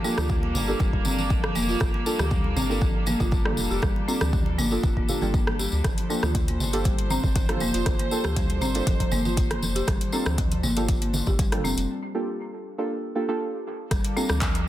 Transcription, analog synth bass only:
0, 0, Header, 1, 2, 480
1, 0, Start_track
1, 0, Key_signature, -2, "minor"
1, 0, Tempo, 504202
1, 1724, Time_signature, 4, 2, 24, 8
1, 13977, End_track
2, 0, Start_track
2, 0, Title_t, "Analog synth bass"
2, 0, Program_c, 0, 38
2, 169, Note_on_c, 0, 38, 95
2, 522, Note_on_c, 0, 31, 96
2, 537, Note_off_c, 0, 38, 0
2, 708, Note_off_c, 0, 31, 0
2, 762, Note_on_c, 0, 29, 83
2, 948, Note_off_c, 0, 29, 0
2, 1001, Note_on_c, 0, 31, 77
2, 1439, Note_off_c, 0, 31, 0
2, 1482, Note_on_c, 0, 29, 90
2, 1668, Note_off_c, 0, 29, 0
2, 1721, Note_on_c, 0, 31, 98
2, 1818, Note_off_c, 0, 31, 0
2, 2088, Note_on_c, 0, 38, 95
2, 2441, Note_on_c, 0, 31, 93
2, 2455, Note_off_c, 0, 38, 0
2, 3000, Note_off_c, 0, 31, 0
2, 3049, Note_on_c, 0, 31, 102
2, 3359, Note_off_c, 0, 31, 0
2, 3403, Note_on_c, 0, 29, 84
2, 3499, Note_off_c, 0, 29, 0
2, 3530, Note_on_c, 0, 29, 102
2, 3616, Note_off_c, 0, 29, 0
2, 3642, Note_on_c, 0, 31, 101
2, 3739, Note_off_c, 0, 31, 0
2, 4010, Note_on_c, 0, 38, 96
2, 4362, Note_on_c, 0, 31, 96
2, 4377, Note_off_c, 0, 38, 0
2, 4548, Note_off_c, 0, 31, 0
2, 4603, Note_on_c, 0, 29, 84
2, 4788, Note_off_c, 0, 29, 0
2, 4971, Note_on_c, 0, 31, 82
2, 5402, Note_off_c, 0, 31, 0
2, 5450, Note_on_c, 0, 38, 88
2, 5536, Note_off_c, 0, 38, 0
2, 5562, Note_on_c, 0, 31, 100
2, 5659, Note_off_c, 0, 31, 0
2, 5930, Note_on_c, 0, 38, 96
2, 6283, Note_on_c, 0, 31, 92
2, 6297, Note_off_c, 0, 38, 0
2, 6841, Note_off_c, 0, 31, 0
2, 6889, Note_on_c, 0, 31, 102
2, 7199, Note_off_c, 0, 31, 0
2, 7244, Note_on_c, 0, 29, 83
2, 7340, Note_off_c, 0, 29, 0
2, 7371, Note_on_c, 0, 29, 102
2, 7457, Note_off_c, 0, 29, 0
2, 7482, Note_on_c, 0, 31, 102
2, 7579, Note_off_c, 0, 31, 0
2, 7851, Note_on_c, 0, 38, 97
2, 8203, Note_on_c, 0, 31, 93
2, 8218, Note_off_c, 0, 38, 0
2, 8389, Note_off_c, 0, 31, 0
2, 8442, Note_on_c, 0, 29, 84
2, 8628, Note_off_c, 0, 29, 0
2, 8683, Note_on_c, 0, 31, 80
2, 9119, Note_off_c, 0, 31, 0
2, 9163, Note_on_c, 0, 29, 89
2, 9348, Note_off_c, 0, 29, 0
2, 9402, Note_on_c, 0, 31, 103
2, 9499, Note_off_c, 0, 31, 0
2, 9769, Note_on_c, 0, 38, 93
2, 10123, Note_on_c, 0, 31, 96
2, 10137, Note_off_c, 0, 38, 0
2, 10681, Note_off_c, 0, 31, 0
2, 10730, Note_on_c, 0, 31, 99
2, 11040, Note_off_c, 0, 31, 0
2, 11081, Note_on_c, 0, 29, 86
2, 11178, Note_off_c, 0, 29, 0
2, 11207, Note_on_c, 0, 29, 106
2, 11295, Note_off_c, 0, 29, 0
2, 13243, Note_on_c, 0, 31, 105
2, 13339, Note_off_c, 0, 31, 0
2, 13611, Note_on_c, 0, 38, 97
2, 13977, Note_off_c, 0, 38, 0
2, 13977, End_track
0, 0, End_of_file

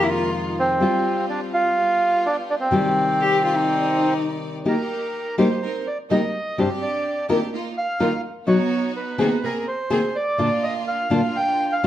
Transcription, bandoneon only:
0, 0, Header, 1, 2, 480
1, 0, Start_track
1, 0, Tempo, 479233
1, 811, Time_signature, 4, 2, 24, 8
1, 11888, End_track
2, 0, Start_track
2, 0, Title_t, "Bandoneon"
2, 0, Program_c, 0, 23
2, 0, Note_on_c, 0, 58, 75
2, 303, Note_off_c, 0, 58, 0
2, 596, Note_on_c, 0, 60, 82
2, 1260, Note_off_c, 0, 60, 0
2, 1300, Note_on_c, 0, 62, 81
2, 1405, Note_off_c, 0, 62, 0
2, 1540, Note_on_c, 0, 65, 95
2, 2264, Note_on_c, 0, 62, 83
2, 2274, Note_off_c, 0, 65, 0
2, 2368, Note_off_c, 0, 62, 0
2, 2506, Note_on_c, 0, 62, 83
2, 2556, Note_off_c, 0, 62, 0
2, 2611, Note_on_c, 0, 60, 86
2, 4141, Note_off_c, 0, 60, 0
2, 4692, Note_on_c, 0, 70, 63
2, 5364, Note_off_c, 0, 70, 0
2, 5397, Note_on_c, 0, 72, 67
2, 5881, Note_on_c, 0, 74, 69
2, 5892, Note_off_c, 0, 72, 0
2, 5988, Note_off_c, 0, 74, 0
2, 6124, Note_on_c, 0, 75, 90
2, 6606, Note_on_c, 0, 72, 67
2, 6611, Note_off_c, 0, 75, 0
2, 6710, Note_off_c, 0, 72, 0
2, 6833, Note_on_c, 0, 74, 75
2, 7275, Note_off_c, 0, 74, 0
2, 7788, Note_on_c, 0, 77, 83
2, 8226, Note_off_c, 0, 77, 0
2, 8491, Note_on_c, 0, 73, 72
2, 8935, Note_off_c, 0, 73, 0
2, 8979, Note_on_c, 0, 71, 68
2, 9462, Note_on_c, 0, 70, 74
2, 9466, Note_off_c, 0, 71, 0
2, 9679, Note_off_c, 0, 70, 0
2, 9695, Note_on_c, 0, 72, 74
2, 10172, Note_on_c, 0, 74, 88
2, 10185, Note_off_c, 0, 72, 0
2, 10651, Note_on_c, 0, 75, 76
2, 10664, Note_off_c, 0, 74, 0
2, 10758, Note_off_c, 0, 75, 0
2, 10897, Note_on_c, 0, 77, 84
2, 11381, Note_on_c, 0, 79, 94
2, 11388, Note_off_c, 0, 77, 0
2, 11744, Note_on_c, 0, 77, 80
2, 11750, Note_off_c, 0, 79, 0
2, 11888, Note_off_c, 0, 77, 0
2, 11888, End_track
0, 0, End_of_file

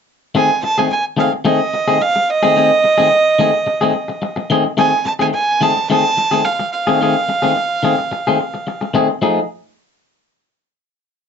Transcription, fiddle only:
0, 0, Header, 1, 2, 480
1, 0, Start_track
1, 0, Tempo, 553506
1, 305, Time_signature, 4, 2, 24, 8
1, 9786, End_track
2, 0, Start_track
2, 0, Title_t, "Fiddle"
2, 0, Program_c, 0, 110
2, 323, Note_on_c, 0, 80, 96
2, 537, Note_off_c, 0, 80, 0
2, 555, Note_on_c, 0, 81, 95
2, 682, Note_on_c, 0, 80, 91
2, 695, Note_off_c, 0, 81, 0
2, 789, Note_off_c, 0, 80, 0
2, 799, Note_on_c, 0, 80, 100
2, 904, Note_off_c, 0, 80, 0
2, 1038, Note_on_c, 0, 77, 75
2, 1143, Note_off_c, 0, 77, 0
2, 1270, Note_on_c, 0, 75, 87
2, 1754, Note_on_c, 0, 77, 99
2, 1767, Note_off_c, 0, 75, 0
2, 1992, Note_on_c, 0, 75, 110
2, 2005, Note_off_c, 0, 77, 0
2, 3907, Note_off_c, 0, 75, 0
2, 4148, Note_on_c, 0, 80, 101
2, 4369, Note_off_c, 0, 80, 0
2, 4387, Note_on_c, 0, 81, 97
2, 4443, Note_off_c, 0, 81, 0
2, 4521, Note_on_c, 0, 80, 96
2, 4569, Note_off_c, 0, 80, 0
2, 4629, Note_on_c, 0, 80, 105
2, 4874, Note_on_c, 0, 81, 102
2, 4887, Note_off_c, 0, 80, 0
2, 5109, Note_off_c, 0, 81, 0
2, 5117, Note_on_c, 0, 81, 112
2, 5593, Note_on_c, 0, 77, 92
2, 5606, Note_off_c, 0, 81, 0
2, 5827, Note_off_c, 0, 77, 0
2, 5832, Note_on_c, 0, 77, 96
2, 7717, Note_off_c, 0, 77, 0
2, 9786, End_track
0, 0, End_of_file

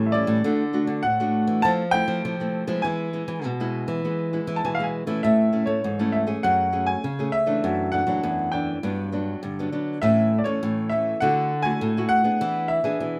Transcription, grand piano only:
0, 0, Header, 1, 2, 480
1, 0, Start_track
1, 0, Tempo, 598205
1, 360, Time_signature, 4, 2, 24, 8
1, 10588, End_track
2, 0, Start_track
2, 0, Title_t, "Grand piano"
2, 0, Program_c, 0, 0
2, 51, Note_on_c, 0, 76, 57
2, 97, Note_on_c, 0, 74, 84
2, 113, Note_off_c, 0, 76, 0
2, 823, Note_on_c, 0, 78, 96
2, 852, Note_off_c, 0, 74, 0
2, 1302, Note_on_c, 0, 81, 107
2, 1328, Note_off_c, 0, 78, 0
2, 1359, Note_off_c, 0, 81, 0
2, 1536, Note_on_c, 0, 79, 110
2, 2238, Note_off_c, 0, 79, 0
2, 2264, Note_on_c, 0, 80, 94
2, 3632, Note_off_c, 0, 80, 0
2, 3661, Note_on_c, 0, 81, 80
2, 3731, Note_on_c, 0, 80, 69
2, 3741, Note_off_c, 0, 81, 0
2, 3809, Note_on_c, 0, 77, 75
2, 3812, Note_off_c, 0, 80, 0
2, 3879, Note_on_c, 0, 80, 66
2, 3887, Note_off_c, 0, 77, 0
2, 3959, Note_off_c, 0, 80, 0
2, 4197, Note_on_c, 0, 76, 92
2, 4536, Note_off_c, 0, 76, 0
2, 4540, Note_on_c, 0, 73, 76
2, 4887, Note_off_c, 0, 73, 0
2, 4914, Note_on_c, 0, 76, 80
2, 4969, Note_off_c, 0, 76, 0
2, 5161, Note_on_c, 0, 78, 96
2, 5498, Note_off_c, 0, 78, 0
2, 5509, Note_on_c, 0, 80, 90
2, 5851, Note_off_c, 0, 80, 0
2, 5875, Note_on_c, 0, 76, 98
2, 6328, Note_off_c, 0, 76, 0
2, 6352, Note_on_c, 0, 78, 97
2, 6833, Note_on_c, 0, 79, 78
2, 6853, Note_off_c, 0, 78, 0
2, 7765, Note_off_c, 0, 79, 0
2, 8037, Note_on_c, 0, 76, 100
2, 8322, Note_off_c, 0, 76, 0
2, 8333, Note_on_c, 0, 74, 56
2, 8379, Note_on_c, 0, 73, 76
2, 8396, Note_off_c, 0, 74, 0
2, 8724, Note_off_c, 0, 73, 0
2, 8742, Note_on_c, 0, 76, 86
2, 8974, Note_off_c, 0, 76, 0
2, 8991, Note_on_c, 0, 78, 97
2, 9328, Note_on_c, 0, 80, 98
2, 9366, Note_off_c, 0, 78, 0
2, 9677, Note_off_c, 0, 80, 0
2, 9698, Note_on_c, 0, 78, 111
2, 10156, Note_off_c, 0, 78, 0
2, 10177, Note_on_c, 0, 76, 91
2, 10588, Note_off_c, 0, 76, 0
2, 10588, End_track
0, 0, End_of_file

